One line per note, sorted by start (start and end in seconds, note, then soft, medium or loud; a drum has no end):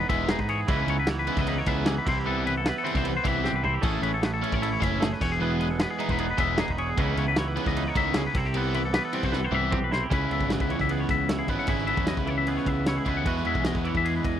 0.00 0.47 E2 medium
0.00 0.68 B3 medium
0.00 0.29 D#4 medium
0.00 0.48 G#4 medium
0.09 0.34 E1 medium
0.09 0.36 E3 medium
0.09 0.47 G#3 medium
0.09 0.36 G#3 medium
0.09 0.36 B3 loud
0.09 0.36 E4 loud
0.09 0.29 E5 medium
0.09 kick medium
0.09 ride medium
0.28 0.48 D#4 medium
0.28 0.39 G#4 medium
0.28 snare loud
0.28 ride loud
0.39 0.63 G#2 loud
0.39 0.49 B4 medium
0.39 kick medium
0.48 0.69 E2 medium
0.48 0.67 G#4 medium
0.48 0.59 C#5 medium
0.48 snare soft
0.48 ride medium
0.59 0.70 G#4 medium
0.67 0.85 C#2 medium
0.67 1.08 C#3 medium
0.67 0.95 C#3 medium
0.67 1.07 E3 soft
0.67 0.95 G#3 medium
0.67 0.89 B3 medium
0.67 0.95 C#4 medium
0.67 1.46 D#4 medium
0.67 0.95 E4 medium
0.67 2.06 E4 medium
0.67 0.89 B4 medium
0.67 kick loud
0.67 ride loud
0.87 1.28 C#2 loud
0.87 1.27 B3 medium
0.87 0.99 C#5 medium
0.87 ride medium
0.99 1.09 B4 medium
1.07 1.86 E3 medium
1.07 1.19 C#5 medium
1.07 snare loud
1.07 ride loud
1.18 1.39 B4 medium
1.18 snare soft
1.27 1.54 C#3 medium
1.27 1.54 G#3 loud
1.27 1.67 B3 medium
1.27 1.54 C#4 medium
1.27 1.53 E4 loud
1.27 ride medium
1.36 1.61 C#2 medium
1.36 1.48 D#5 medium
1.36 kick medium
1.36 snare soft
1.47 2.05 D#4 medium
1.47 1.58 B4 medium
1.47 ride loud
1.58 1.67 C#5 medium
1.66 1.98 C#2 medium
1.66 1.94 C#3 medium
1.66 1.93 G#3 medium
1.66 2.08 B3 medium
1.66 1.93 C#4 medium
1.66 1.93 E4 loud
1.66 1.87 E5 medium
1.66 kick medium
1.66 ride medium
1.86 2.44 E3 medium
1.86 1.97 G#4 medium
1.86 snare loud
1.86 ride loud
1.98 2.08 B4 medium
2.05 2.71 C2 loud
2.05 2.46 C3 medium
2.05 3.63 E4 medium
2.05 2.18 C5 medium
2.05 kick loud
2.05 snare soft
2.05 crash medium
2.19 2.28 G4 medium
2.26 2.52 E3 medium
2.26 2.52 G3 medium
2.26 2.66 B3 medium
2.26 2.52 C4 medium
2.26 2.52 E4 loud
2.26 2.46 A4 medium
2.45 3.23 E3 medium
2.45 2.56 B4 medium
2.45 ride medium
2.58 2.68 A4 medium
2.66 3.03 B3 medium
2.66 2.77 B4 medium
2.66 snare loud
2.66 ride loud
2.76 2.97 A4 medium
2.76 snare soft
2.84 3.11 E3 medium
2.84 3.11 G3 medium
2.84 3.43 C4 medium
2.84 3.11 C4 medium
2.84 3.11 E4 loud
2.84 ride medium
2.95 3.19 C2 medium
2.95 3.07 C5 medium
2.95 kick medium
2.95 snare soft
3.04 3.66 B3 medium
3.04 3.16 A4 medium
3.04 ride loud
3.17 3.27 C5 medium
3.24 3.49 C2 medium
3.24 3.81 E3 medium
3.24 3.50 E3 medium
3.24 3.50 G3 medium
3.24 3.50 C4 loud
3.24 3.50 E4 loud
3.24 3.46 E5 medium
3.24 kick medium
3.24 ride medium
3.44 3.62 C4 medium
3.44 3.55 G4 medium
3.44 snare medium
3.53 3.77 C2 medium
3.53 3.64 B4 medium
3.63 3.81 C3 medium
3.63 3.83 E4 medium
3.63 3.74 C5 medium
3.63 floor tom medium
3.74 3.84 G4 medium
3.81 3.99 A1 medium
3.81 5.20 A2 medium
3.81 4.09 E3 medium
3.81 4.21 A3 medium
3.81 4.09 A3 medium
3.81 4.01 C#4 medium
3.81 4.09 C#4 medium
3.81 4.62 E4 medium
3.81 4.09 E4 medium
3.81 5.21 G#4 medium
3.81 4.03 A4 medium
3.81 kick loud
3.81 crash loud
4.02 4.42 A1 loud
4.02 4.41 C#4 medium
4.02 4.13 B4 medium
4.02 ride medium
4.14 4.24 A4 medium
4.22 4.99 A3 medium
4.22 4.33 B4 medium
4.22 snare loud
4.22 ride loud
4.34 4.54 A4 medium
4.42 4.68 E3 medium
4.42 4.68 A3 loud
4.42 4.68 C#4 medium
4.42 4.80 C#4 medium
4.42 4.68 E4 loud
4.42 ride medium
4.52 4.76 A1 medium
4.52 4.63 C#5 medium
4.52 kick medium
4.62 6.00 E4 medium
4.62 4.72 A4 medium
4.62 ride loud
4.73 4.82 C#5 medium
4.80 5.13 F#1 medium
4.80 5.07 E3 medium
4.80 5.07 A3 medium
4.80 5.07 C#4 loud
4.80 5.18 C#4 medium
4.80 5.07 E4 loud
4.80 5.02 E5 medium
4.80 kick medium
4.80 ride medium
5.00 5.18 A3 medium
5.00 5.13 G#4 medium
5.00 snare loud
5.00 ride loud
5.13 5.22 B4 medium
5.13 snare soft
5.20 5.84 E1 loud
5.20 6.76 E2 medium
5.20 6.76 G#4 medium
5.20 5.31 C#5 medium
5.20 kick loud
5.20 crash medium
5.31 5.40 G#4 medium
5.31 snare soft
5.40 5.66 E3 medium
5.40 5.66 G#3 medium
5.40 5.67 B3 medium
5.40 5.80 B3 medium
5.40 5.67 E4 medium
5.40 5.60 G#4 medium
5.60 6.36 G#3 medium
5.60 5.71 B4 medium
5.60 ride medium
5.71 5.80 A4 medium
5.79 6.19 B3 medium
5.79 5.90 B4 medium
5.79 snare loud
5.79 ride loud
5.91 6.10 G#4 medium
5.99 6.25 E3 medium
5.99 6.25 G#3 medium
5.99 6.25 B3 loud
5.99 6.57 D#4 medium
5.99 6.25 E4 loud
5.99 ride medium
6.08 6.33 E1 medium
6.08 6.20 B4 medium
6.08 kick medium
6.18 6.98 B3 medium
6.18 6.30 G#4 medium
6.18 ride loud
6.31 6.40 B4 medium
6.37 6.62 E1 medium
6.37 6.65 E3 medium
6.37 6.75 G#3 medium
6.37 6.64 G#3 medium
6.37 6.64 B3 loud
6.37 6.64 E4 loud
6.37 6.59 E5 medium
6.37 kick medium
6.37 ride medium
6.58 6.76 D#4 medium
6.58 6.70 G#4 medium
6.58 snare loud
6.58 ride loud
6.68 6.92 E1 loud
6.68 6.79 B4 medium
6.68 kick medium
6.77 6.97 E2 medium
6.77 6.96 G#4 medium
6.77 6.88 C#5 medium
6.77 ride medium
6.89 6.99 G#4 medium
6.97 7.13 C#2 loud
6.97 7.37 C#3 medium
6.97 7.23 C#3 medium
6.97 7.37 E3 medium
6.97 7.23 G#3 medium
6.97 7.17 B3 medium
6.97 7.24 C#4 medium
6.97 7.76 D#4 medium
6.97 7.24 E4 medium
6.97 8.36 E4 medium
6.97 7.18 B4 loud
6.97 kick loud
6.97 ride medium
7.17 7.57 C#2 medium
7.17 7.56 B3 medium
7.17 7.28 C#5 medium
7.17 ride medium
7.28 7.37 B4 medium
7.36 7.93 E3 medium
7.36 7.48 C#5 medium
7.36 snare loud
7.36 ride loud
7.48 7.67 B4 medium
7.56 7.82 C#3 medium
7.56 7.82 G#3 medium
7.56 8.39 B3 medium
7.56 7.82 C#4 loud
7.56 7.82 E4 medium
7.56 ride medium
7.66 7.90 C#2 medium
7.66 7.77 D#5 medium
7.66 kick medium
7.66 snare soft
7.76 8.33 D#4 medium
7.76 7.88 B4 medium
7.76 ride loud
7.88 7.97 C#5 medium
7.94 8.27 C#2 medium
7.94 8.22 C#3 medium
7.94 8.14 D#3 medium
7.94 8.22 G#3 medium
7.94 8.21 C#4 medium
7.94 8.21 E4 loud
7.94 8.16 E5 medium
7.94 kick medium
7.94 ride medium
8.14 8.35 C#3 medium
8.14 8.26 G#4 medium
8.14 snare loud
8.14 ride loud
8.27 8.37 B4 medium
8.34 8.98 C2 loud
8.34 8.75 C3 medium
8.34 9.90 E4 medium
8.34 8.46 C5 medium
8.34 kick loud
8.34 ride medium
8.44 8.56 G4 medium
8.44 snare soft
8.54 8.80 C3 medium
8.54 8.80 G3 medium
8.54 8.92 B3 medium
8.54 8.80 C4 medium
8.54 8.80 E4 loud
8.54 8.75 A4 medium
8.54 ride loud
8.74 9.50 E3 medium
8.74 8.84 B4 medium
8.74 ride medium
8.85 8.94 A4 medium
8.93 9.31 B3 medium
8.93 9.04 B4 medium
8.93 snare loud
8.93 ride loud
9.05 9.24 A4 medium
9.13 9.39 C3 medium
9.13 9.39 G3 loud
9.13 9.39 C4 loud
9.13 9.70 C4 medium
9.13 9.39 E4 loud
9.13 ride medium
9.23 9.47 C2 medium
9.23 9.34 C5 medium
9.23 kick medium
9.32 9.89 B3 medium
9.32 9.45 A4 medium
9.32 snare medium
9.45 9.54 C5 medium
9.51 9.76 C2 medium
9.51 9.78 C3 medium
9.51 9.89 E3 medium
9.51 9.78 G3 medium
9.51 9.78 C4 medium
9.51 9.78 E4 medium
9.51 9.73 E5 medium
9.51 mid tom medium
9.71 9.89 C4 medium
9.71 9.83 G4 medium
9.71 kick loud
9.82 10.06 B1 medium
9.82 9.93 B4 medium
9.91 10.09 C3 medium
9.91 10.09 E4 medium
9.91 10.03 C5 medium
9.91 snare medium
10.03 10.12 G4 medium
10.10 10.27 C#2 medium
10.10 10.70 C#3 medium
10.10 11.48 C#3 medium
10.10 11.50 G#3 medium
10.10 11.48 C#4 medium
10.10 11.29 E4 medium
10.10 11.48 E4 medium
10.10 10.32 B4 medium
10.10 kick loud
10.10 ride medium
10.31 10.39 C#2 medium
10.31 10.91 B3 medium
10.31 10.52 E5 medium
10.31 ride medium
10.40 10.56 G#1 medium
10.40 kick medium
10.50 10.61 D#5 medium
10.50 snare loud
10.50 ride medium
10.60 10.76 C#2 medium
10.60 10.71 B4 medium
10.60 kick medium
10.69 12.26 E3 medium
10.69 10.81 C#5 medium
10.69 ride medium
10.79 11.04 C#2 medium
10.79 10.91 E5 medium
10.79 kick medium
10.79 snare soft
10.89 11.49 B3 medium
10.89 11.00 G#4 medium
10.89 ride medium
11.00 11.10 C#5 medium
11.09 11.41 C#2 medium
11.09 11.29 E5 medium
11.09 kick medium
11.09 snare soft
11.09 ride medium
11.29 11.69 E4 medium
11.29 11.39 C#5 medium
11.29 snare loud
11.29 ride medium
11.39 11.49 G#4 medium
11.47 11.56 G#1 medium
11.47 11.66 C#3 medium
11.47 11.67 G#3 medium
11.47 11.72 B3 soft
11.47 11.67 C#4 medium
11.47 11.69 E4 medium
11.47 11.59 B4 medium
11.47 kick medium
11.47 ride medium
11.58 11.69 F#5 medium
11.58 snare soft
11.67 11.92 G#1 loud
11.67 13.05 C#3 medium
11.67 12.28 C#3 medium
11.67 13.06 G#3 medium
11.67 13.05 C#4 medium
11.67 13.04 E4 medium
11.67 12.88 E4 medium
11.67 11.88 B4 medium
11.67 kick loud
11.67 ride medium
11.78 snare soft
11.87 12.48 B3 medium
11.87 12.08 E5 medium
11.87 ride medium
11.97 12.14 E2 medium
11.97 kick medium
12.07 12.18 D#5 medium
12.07 snare loud
12.07 ride medium
12.17 12.57 C#2 medium
12.17 12.28 B4 medium
12.17 kick medium
12.26 13.30 E3 medium
12.26 12.37 C#5 medium
12.26 ride medium
12.38 12.48 E5 medium
12.47 13.07 B3 medium
12.47 12.57 G#4 medium
12.47 ride medium
12.57 12.67 C#5 medium
12.57 snare soft
12.65 12.98 C#2 medium
12.65 12.87 E5 medium
12.65 kick medium
12.65 ride medium
12.86 13.27 E4 medium
12.86 12.97 C#5 medium
12.86 snare loud
12.86 ride medium
12.97 13.08 G#4 medium
13.05 13.25 C#2 medium
13.05 13.25 C#3 medium
13.05 13.25 G#3 medium
13.05 13.45 B3 soft
13.05 13.25 C#4 medium
13.05 13.27 E4 medium
13.05 13.17 B4 medium
13.05 kick medium
13.05 ride medium
13.17 13.27 F#5 medium
13.25 13.42 E2 medium
13.25 14.40 E2 medium
13.25 14.40 E3 medium
13.25 14.40 G#3 medium
13.25 14.40 B3 medium
13.25 14.40 E4 loud
13.25 14.40 F#4 medium
13.25 13.46 B4 medium
13.25 kick loud
13.25 ride medium
13.36 snare soft
13.45 13.54 E2 medium
13.45 14.04 G#3 medium
13.45 13.66 E5 medium
13.45 ride soft
13.55 13.71 B1 medium
13.55 kick medium
13.64 13.76 D#5 medium
13.64 snare loud
13.64 ride medium
13.74 13.91 E2 medium
13.74 13.87 B4 medium
13.74 kick medium
13.84 14.40 E3 medium
13.84 13.96 C#5 medium
13.84 ride medium
13.94 14.19 E2 medium
13.94 14.06 E5 medium
13.94 kick medium
14.04 14.40 G#3 medium
14.04 14.15 G#4 medium
14.04 ride medium
14.17 14.26 B4 medium
14.24 14.40 E2 medium
14.24 14.40 D#5 medium
14.24 kick medium
14.24 ride medium